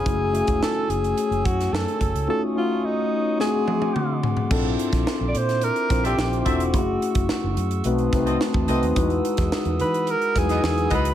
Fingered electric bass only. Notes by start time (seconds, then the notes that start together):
0.06 F#1
0.48 E1
0.89 F#1
1.31 F#1
1.46 F#2
1.73 F#2
2.01 F#1
2.14 C#2
4.51 A#1
4.93 A#1
5.21 A#1
5.35 A#2
5.90 A#1
6.18 A#1
6.46 E1
6.74 F#1
7.15 F#1
7.44 F#1
7.57 F#2
7.85 B1
8.13 C2
8.54 E2
8.68 C2
8.82 D#2
8.96 E2
9.38 E2
9.65 E2
9.79 E3
10.35 E2
10.63 E2
10.91 C#2